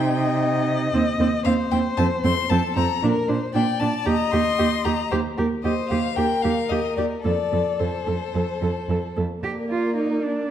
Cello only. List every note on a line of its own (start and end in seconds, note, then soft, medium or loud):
0.00 0.89 C3 medium
0.93 1.01 D#2 medium
1.19 1.27 D#2 medium
1.46 1.54 D#2 medium
1.72 1.80 D#2 medium
1.98 2.06 F2 medium
2.24 2.32 F2 medium
2.50 2.58 F2 medium
2.77 2.85 F2 medium
3.03 3.11 A#2 medium
3.29 3.37 A#2 medium
3.55 3.63 A#2 medium
3.81 3.89 A#2 medium
4.07 4.15 D#2 medium
4.33 4.41 D#2 medium
4.60 4.68 D#2 medium
4.86 4.94 D#2 medium
5.12 5.20 D#2 medium
5.38 5.46 D#2 medium
5.65 5.73 D#2 medium
5.91 5.99 D#2 medium
6.18 6.26 D#2 medium
6.45 6.53 D#2 medium
6.71 6.79 D#2 medium
6.98 7.06 D#2 medium
7.25 7.33 F2 medium
7.52 7.60 F2 medium
7.80 7.88 F2 medium
8.07 8.15 F2 medium
8.35 8.43 F2 medium
8.62 8.70 F2 medium
8.89 8.97 F2 medium
9.17 9.25 F2 medium
9.43 9.51 G4 medium
9.70 9.96 F4 medium
9.97 10.25 D#4 medium
10.23 10.51 D4 medium